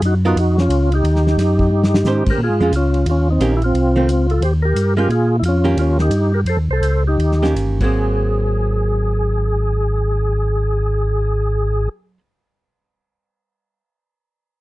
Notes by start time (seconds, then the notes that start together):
0.01 F#2 D#4, hi-hat pedal, ride
0.06 F#4
0.25 B3 D#4 F4 F#4 A#4
0.36 F2 D#4 F#4, ride
0.58 C#4 F4, snare
0.69 C#2, hi-hat pedal, ride
0.92 D#4 G4, ride
1.03 D#2, ride
1.16 snare
1.27 snare
1.37 F#2, snare, hi-hat pedal, ride
1.59 kick
1.71 G2
1.84 snare
1.94 snare
2.04 G#2 D#3 C#4 G4 C5, snare, hi-hat pedal
2.26 G#2, kick, crash
2.30 G4 A#4
2.38 A#2
2.43 F4 G#4
2.49 G#2
2.60 F2 G#3 C#4 F4
2.71 C#2, hi-hat pedal, ride
2.76 C#4 F4
2.94 ride
3.05 D#2, ride
3.09 C#4 F4
3.30 C4 D#4
3.39 A#1 D#3 A#3 C#4 G4, hi-hat pedal, ride
3.57 E4
3.62 C4 F4, ride
3.74 C2, ride
3.96 D#3 A3 C4
4.07 C#2, hi-hat pedal, ride
4.30 F4 A4, ride
4.41 D#2 G4 C5, ride
4.62 G4 A#4
4.75 G2, hi-hat pedal, ride
4.97 G#3 C#4 F4 G4 A#4
5.09 A#2 F4 G#4, ride
5.39 F2 E4
5.43 F4, hi-hat pedal, ride
5.48 C#4
5.64 D#3 A#3 C#4 G4
5.76 D#2 F4, ride
5.81 C#4
5.99 D#4 G4, snare
6.10 G2, hi-hat pedal, ride
6.34 G4 A#4
6.45 F2 C5, ride
6.49 A4
6.57 D#2
6.68 C2 C5
6.73 A4
6.81 C#2, hi-hat pedal, ride
7.07 D#4 G4
7.18 D#2, ride
7.32 snare
7.43 D#3 A#3 C#4 G4, snare
7.56 G1, hi-hat pedal, ride
7.80 G#1 F#3 A#3 C4 G#4, kick, crash